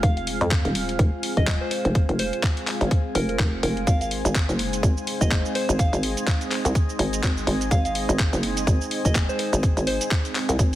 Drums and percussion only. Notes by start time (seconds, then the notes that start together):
0.03 kick, closed hi-hat
0.17 closed hi-hat
0.27 open hi-hat
0.41 closed hi-hat
0.51 kick, clap, closed hi-hat
0.65 closed hi-hat
0.75 open hi-hat
0.89 closed hi-hat
0.99 kick, closed hi-hat
1.23 open hi-hat
1.37 kick, closed hi-hat
1.47 kick, clap, closed hi-hat
1.71 open hi-hat
1.85 closed hi-hat
1.95 kick, closed hi-hat
2.09 closed hi-hat
2.19 open hi-hat
2.33 closed hi-hat
2.43 kick, clap, closed hi-hat
2.57 closed hi-hat
2.67 clap, open hi-hat
2.81 closed hi-hat
2.91 kick, closed hi-hat
3.15 open hi-hat
3.29 closed hi-hat
3.39 kick, clap, closed hi-hat
3.63 open hi-hat
3.77 closed hi-hat
3.87 kick, closed hi-hat, cabasa
4.01 closed hi-hat, cabasa
4.11 open hi-hat
4.25 closed hi-hat, cabasa
4.35 kick, clap, closed hi-hat, cabasa
4.49 closed hi-hat, cabasa
4.59 open hi-hat
4.73 closed hi-hat, cabasa
4.83 kick, closed hi-hat, cabasa
4.97 cabasa
5.07 open hi-hat
5.21 kick, closed hi-hat, cabasa
5.31 kick, clap, closed hi-hat, cabasa
5.45 cabasa
5.55 open hi-hat
5.69 closed hi-hat, cabasa
5.79 kick, closed hi-hat, cabasa
5.93 closed hi-hat, cabasa
6.03 open hi-hat
6.17 closed hi-hat, cabasa
6.27 kick, clap, closed hi-hat, cabasa
6.41 closed hi-hat, cabasa
6.51 clap, open hi-hat
6.65 closed hi-hat, cabasa
6.75 kick, closed hi-hat, cabasa
6.89 cabasa
6.99 open hi-hat
7.13 closed hi-hat, cabasa
7.23 kick, clap, closed hi-hat, cabasa
7.37 cabasa
7.47 open hi-hat
7.61 closed hi-hat, cabasa
7.71 kick, closed hi-hat, cabasa
7.85 closed hi-hat, cabasa
7.95 open hi-hat
8.09 closed hi-hat, cabasa
8.19 kick, clap, closed hi-hat, cabasa
8.33 closed hi-hat, cabasa
8.43 open hi-hat
8.57 closed hi-hat, cabasa
8.67 kick, closed hi-hat, cabasa
8.81 cabasa
8.91 open hi-hat
9.05 kick, closed hi-hat, cabasa
9.15 kick, clap, closed hi-hat, cabasa
9.29 cabasa
9.39 open hi-hat
9.53 closed hi-hat, cabasa
9.63 kick, closed hi-hat, cabasa
9.77 closed hi-hat, cabasa
9.87 open hi-hat
10.01 closed hi-hat, cabasa
10.11 kick, clap, closed hi-hat, cabasa
10.25 closed hi-hat, cabasa
10.35 clap, open hi-hat
10.49 closed hi-hat, cabasa
10.59 kick, closed hi-hat, cabasa